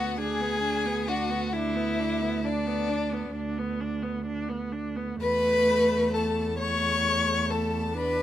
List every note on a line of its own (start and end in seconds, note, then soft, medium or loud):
0.00 5.20 D2 medium
0.00 0.19 B3 medium
0.00 0.17 F#4 medium
0.00 0.19 F#5 medium
0.18 0.42 D4 medium
0.18 1.09 G#4 loud
0.18 1.10 G#5 medium
0.41 0.62 B3 medium
0.63 0.87 D4 medium
0.86 1.10 B3 medium
1.08 1.31 D4 medium
1.08 1.54 F#4 medium
1.08 1.56 F#5 medium
1.30 1.52 B3 medium
1.53 1.77 D4 medium
1.53 2.46 E4 medium
1.53 2.48 E5 medium
1.75 2.01 B3 medium
1.99 2.24 D4 medium
2.22 2.45 B3 medium
2.44 3.34 D4 medium
2.44 2.68 D4 medium
2.44 3.35 D5 medium
2.67 2.91 B3 medium
2.89 3.14 D4 medium
3.13 3.34 B3 medium
3.35 3.59 D4 medium
3.58 3.82 B3 medium
3.81 4.04 D4 medium
4.02 4.25 B3 medium
4.25 4.50 D4 medium
4.49 4.74 B3 medium
4.72 4.97 D4 medium
4.96 5.20 B3 medium
5.20 8.22 E2 medium
5.20 6.55 A3 medium
5.20 6.15 B4 loud
5.20 6.10 B5 loud
6.14 6.58 A4 medium
6.14 6.58 A5 medium
6.58 7.94 A3 medium
6.58 7.52 C#5 loud
6.58 7.53 C#6 medium
7.50 7.96 A4 medium
7.50 7.98 A5 medium
7.97 8.22 D4 medium
7.97 8.22 B4 medium
7.97 8.22 B5 medium